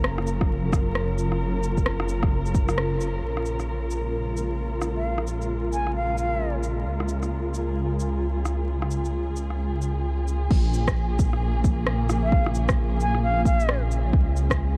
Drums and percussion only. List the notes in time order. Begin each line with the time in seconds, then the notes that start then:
0.04 cross-stick
0.18 cross-stick
0.27 shaker
0.41 kick, cross-stick
0.72 kick, cross-stick, shaker
0.95 cross-stick
1.18 shaker
1.32 cross-stick
1.63 shaker
1.77 kick, shaker
1.86 cross-stick
2.00 cross-stick
2.09 shaker
2.23 kick, cross-stick
2.46 shaker
2.55 kick, shaker
2.69 cross-stick, shaker
2.78 cross-stick
3.01 shaker
3.37 cross-stick
3.46 shaker
3.60 cross-stick, shaker
3.91 shaker
4.37 shaker
4.82 cross-stick, shaker
5.18 cross-stick
5.27 shaker
5.42 shaker
5.73 shaker
5.87 cross-stick
6.18 shaker
6.63 shaker
7.00 cross-stick
7.09 shaker
7.23 cross-stick, shaker
7.54 shaker
8.00 shaker
8.45 cross-stick, shaker
8.82 cross-stick
8.91 shaker
9.05 shaker
9.36 shaker
9.50 cross-stick
9.82 shaker
10.28 shaker
10.51 kick, crash
10.74 shaker
10.87 kick, cross-stick, shaker
11.19 kick, shaker
11.33 cross-stick
11.64 kick, shaker
11.87 cross-stick
12.10 cross-stick, shaker
12.32 kick
12.46 cross-stick
12.55 shaker
12.69 kick, cross-stick, shaker
13.00 shaker
13.15 cross-stick
13.45 kick, shaker
13.60 shaker
13.69 cross-stick
13.91 shaker
14.13 kick
14.36 shaker
14.50 kick, cross-stick, shaker